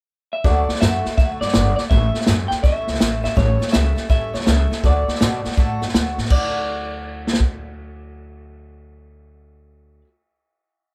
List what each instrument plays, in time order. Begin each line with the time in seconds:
0.33 clean electric guitar E5
0.44 upright bass D2, steel-string acoustic guitar D3 F#3 A3 F#4 A4, clean electric guitar D5, kick, snare
0.69 steel-string acoustic guitar A3 F#4 A4, muted upright bass stroke, snare
0.75 snare
0.81 upright bass F#2, steel-string acoustic guitar F#3 A3 F#4 A4, clean electric guitar E5, snare, hi-hat pedal
1.05 steel-string acoustic guitar A3 F#4 A4, muted upright bass stroke, snare
1.17 upright bass D2, steel-string acoustic guitar D3 F#3 A3 F#4 A4, clean electric guitar E5, kick, snare
1.41 upright bass G2, steel-string acoustic guitar A3 F#4 A4, clean electric guitar D5, snare
1.48 snare
1.54 upright bass G1, steel-string acoustic guitar F#3 A3 F#4, snare, hi-hat pedal
1.58 steel-string acoustic guitar A4
1.76 steel-string acoustic guitar F#4 A4, clean electric guitar D5, snare
1.81 steel-string acoustic guitar A3
1.90 upright bass A1, steel-string acoustic guitar A2 E3 G3 A3 C#4 A4, clean electric guitar E5, kick, snare
2.14 steel-string acoustic guitar G3 A3 C#4 A4, muted upright bass stroke, snare
2.21 snare
2.26 upright bass F#2, steel-string acoustic guitar G3 A3 C#4 A4, snare, hi-hat pedal
2.48 steel-string acoustic guitar A3 C#4 A4, clean electric guitar G5, muted upright bass stroke, snare
2.53 steel-string acoustic guitar G3
2.63 upright bass E2, steel-string acoustic guitar A2 E3 G3 A3 C#4 A4, clean electric guitar E5, kick, snare
2.87 upright bass C#2, steel-string acoustic guitar G3 A3 C#4 A4, snare
2.94 snare
2.99 upright bass A1, steel-string acoustic guitar G3 A3 C#4 A4, snare, hi-hat pedal
3.23 upright bass E2, steel-string acoustic guitar G3 A3 C#4 A4, clean electric guitar E5, snare
3.36 upright bass A1, steel-string acoustic guitar A2 E3 G3 A3 C#4 A4, clean electric guitar C#5, kick, snare
3.59 steel-string acoustic guitar G3 A3 C#4 A4, snare
3.67 snare
3.71 upright bass C#2, steel-string acoustic guitar G3 A3 C#4 A4, clean electric guitar E5, snare, hi-hat pedal
3.95 steel-string acoustic guitar G3 A3 C#4 A4, muted upright bass stroke, snare
4.09 upright bass A1, steel-string acoustic guitar A2 E3 G3 A3 C#4 A4, clean electric guitar E5, kick, snare
4.33 upright bass D2, steel-string acoustic guitar G3 A3 C#4 A4, clean electric guitar C#5, snare
4.40 snare
4.46 upright bass C#2, steel-string acoustic guitar G3 A3 C#4 A4, clean electric guitar E5, snare, hi-hat pedal
4.70 steel-string acoustic guitar G3 A3 C#4 A4, muted upright bass stroke, snare
4.83 upright bass D2, steel-string acoustic guitar D3 F#3 A3 F#4 A4, clean electric guitar D5, kick, snare
5.08 steel-string acoustic guitar A3 F#4 A4, muted upright bass stroke, snare
5.15 snare
5.21 upright bass B2, steel-string acoustic guitar F#3 A3 F#4 A4, snare, hi-hat pedal
5.44 steel-string acoustic guitar A3 F#4 A4, muted upright bass stroke, snare
5.51 snare
5.57 upright bass A2, steel-string acoustic guitar D3 F#3 A3 F#4 A4, kick, snare
5.82 upright bass F#2, steel-string acoustic guitar A3 F#4 A4, snare
5.88 snare
5.94 upright bass D2, steel-string acoustic guitar F#3 A3 F#4 A4, snare, hi-hat pedal
6.18 upright bass A2, steel-string acoustic guitar A3 F#4 A4, snare
6.25 snare
6.30 upright bass D2, steel-string acoustic guitar D3 F#3, clean electric guitar D5, kick, crash
6.34 steel-string acoustic guitar A3 F#4 A4
7.27 snare
7.33 snare
7.40 kick